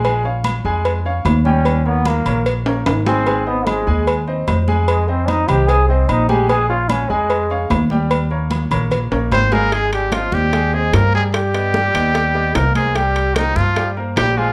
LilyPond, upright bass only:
\new Staff \with { instrumentName = "Upright bass" } { \clef bass \time 4/4 \key aes \major \tempo 4 = 149 bes,,4. f,4. ees,4~ | ees,4. bes,,4. aes,,4~ | aes,,4. ees,4. f,4~ | f,4. c,4. bes,,4~ |
bes,,4. f,4. ees,4~ | ees,4. bes,,4 bes,,8 aes,,4~ | aes,,4. ees,4. g,4~ | g,4. dis,4. c,4~ |
c,4. g,4. bes,,4 | }